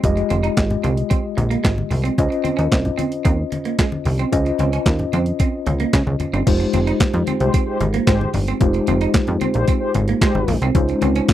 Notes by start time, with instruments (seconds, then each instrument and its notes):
0.03 analog synth bass F1, tine electric piano G3 F4 G4 D#5, kick, closed hi-hat, muted conga
0.09 tine electric piano G#3
0.17 muted clean electric guitar stroke, closed hi-hat
0.30 analog synth bass F1, clean electric guitar C4, closed hi-hat, high conga
0.43 clean electric guitar D#4, closed hi-hat
0.57 analog synth bass G#1, kick, snare, clap, closed hi-hat, muted conga
0.70 closed hi-hat, low conga
0.83 analog synth bass C2, clean electric guitar C4, closed hi-hat, high conga
0.97 closed hi-hat
1.10 clean electric guitar C4, kick, closed hi-hat, muted conga
1.37 analog synth bass A#1, muted clean electric guitar stroke, closed hi-hat, muted conga, high conga
1.50 clean electric guitar A#3, closed hi-hat
1.64 analog synth bass G#1, clean electric guitar G#3, kick, snare, clap, closed hi-hat, muted conga
1.78 high conga
1.91 analog synth bass C2, muted clean electric guitar stroke, open hi-hat, high conga, low conga
2.04 clean electric guitar C4, closed hi-hat
2.18 analog synth bass C#2, tine electric piano C#4 F4 C5 D#5, kick, closed hi-hat, muted conga
2.30 muted clean electric guitar stroke, closed hi-hat
2.44 clean electric guitar C4, closed hi-hat, muted conga, high conga
2.57 analog synth bass D#2, clean electric guitar C#4, closed hi-hat
2.72 analog synth bass C2, kick, snare, clap, closed hi-hat
2.85 closed hi-hat, low conga
2.98 clean electric guitar C4, closed hi-hat, muted conga, high conga
3.12 closed hi-hat
3.25 analog synth bass D#2, clean electric guitar C4, kick, closed hi-hat, muted conga
3.52 muted clean electric guitar stroke, closed hi-hat, high conga
3.65 clean electric guitar A#3, closed hi-hat
3.79 clean electric guitar G#3, kick, snare, clap, closed hi-hat
3.92 high conga
4.05 analog synth bass C2, muted clean electric guitar stroke, open hi-hat, muted conga, high conga, low conga
4.19 clean electric guitar C4, closed hi-hat
4.32 analog synth bass C#2, tine electric piano C#4 F4 C5 D#5, kick, closed hi-hat, muted conga
4.46 muted clean electric guitar stroke, closed hi-hat
4.59 analog synth bass C#2, clean electric guitar C4, closed hi-hat, muted conga, high conga
4.73 clean electric guitar C#4, closed hi-hat
4.86 analog synth bass D#2, kick, snare, clap, closed hi-hat
4.99 closed hi-hat, low conga
5.13 analog synth bass F2, clean electric guitar C4, closed hi-hat, muted conga, high conga
5.26 closed hi-hat
5.40 clean electric guitar C4, kick, closed hi-hat, muted conga
5.66 analog synth bass C#2, muted clean electric guitar stroke, closed hi-hat, muted conga, high conga
5.80 clean electric guitar A#3, closed hi-hat
5.93 analog synth bass C#3, clean electric guitar G#3, kick, snare, clap, closed hi-hat
6.07 analog synth bass C#2, high conga
6.20 muted clean electric guitar stroke, closed hi-hat, muted conga, high conga, low conga
6.33 analog synth bass G1, clean electric guitar C4, closed hi-hat
6.46 analog synth bass F1, tine electric piano G#3 D#4 F4 G4 C5, kick, closed hi-hat, crash, low conga
6.60 muted clean electric guitar stroke, closed hi-hat
6.73 analog synth bass F1, clean electric guitar C4, closed hi-hat, high conga
6.87 clean electric guitar D#4, closed hi-hat
7.00 analog synth bass F2, kick, snare, clap, closed hi-hat, muted conga
7.14 analog synth bass F2, closed hi-hat, low conga
7.27 clean electric guitar C4, closed hi-hat, high conga
7.40 analog synth bass C2, analog polysynth G#3 G4 C5, closed hi-hat
7.54 clean electric guitar C4, kick, closed hi-hat
7.67 analog polysynth G#3 G4 C5
7.81 analog synth bass G#1, muted clean electric guitar stroke, closed hi-hat, high conga
7.94 clean electric guitar A#3, closed hi-hat
8.06 analog synth bass G#1, analog polysynth G#3 G4 C5, clean electric guitar G#3, kick, snare, clap, closed hi-hat, muted conga
8.21 high conga
8.34 analog synth bass G1, muted clean electric guitar stroke, open hi-hat, high conga, low conga
8.48 clean electric guitar C4, closed hi-hat
8.60 analog synth bass F1, tine electric piano G#3 D#4 F4 G4 C5, kick, closed hi-hat, muted conga, low conga
8.74 muted clean electric guitar stroke, closed hi-hat
8.87 analog synth bass F1, clean electric guitar C4, closed hi-hat, high conga
9.01 clean electric guitar D#4, closed hi-hat
9.14 analog synth bass F2, kick, snare, clap, closed hi-hat, muted conga
9.27 analog synth bass F2, closed hi-hat, low conga
9.41 clean electric guitar C4, closed hi-hat, muted conga, high conga
9.54 analog synth bass A#1, analog polysynth G#3 G4 C5, closed hi-hat
9.68 clean electric guitar C4, kick, closed hi-hat
9.80 analog polysynth G#3 G4 C5
9.94 analog synth bass G#1, muted clean electric guitar stroke, closed hi-hat, muted conga, high conga
10.08 clean electric guitar A#3, closed hi-hat
10.20 analog polysynth G#3 G4 C5, clean electric guitar G#3, kick, snare, clap, closed hi-hat, muted conga
10.35 analog synth bass G#1, high conga
10.48 analog synth bass A#1, muted clean electric guitar stroke, open hi-hat, high conga, low conga
10.62 analog synth bass C2, clean electric guitar C4, closed hi-hat
10.74 analog synth bass C#2, tine electric piano G#3 C#4 D#4 F4 C5, kick, closed hi-hat, muted conga, low conga
10.89 muted clean electric guitar stroke, closed hi-hat
11.02 analog synth bass C#2, clean electric guitar C4, closed hi-hat, muted conga, high conga
11.16 clean electric guitar C#4, closed hi-hat
11.28 analog synth bass C#3, kick, snare, clap, closed hi-hat, muted conga